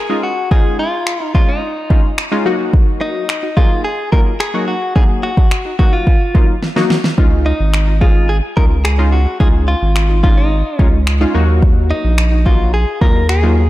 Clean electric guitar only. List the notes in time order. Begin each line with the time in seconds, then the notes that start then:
Already playing: G#4
0.23 F#4
0.51 G#4
0.79 F4
1.35 F4
1.49 D#4
3.01 D#4
3.57 F4
3.84 G#4
4.12 A#4
4.40 G#4
4.68 F#4
4.96 G#4
5.23 F#4
5.79 F#4
5.93 F4
7.46 D#4
8.01 F4
8.29 G#4
8.57 A#4
8.85 G#4
9.12 F#4
9.40 G#4
9.68 F4
10.23 F4
10.37 D#4
11.91 D#4
12.46 F4
12.74 G#4
13.02 A#4
13.29 G#4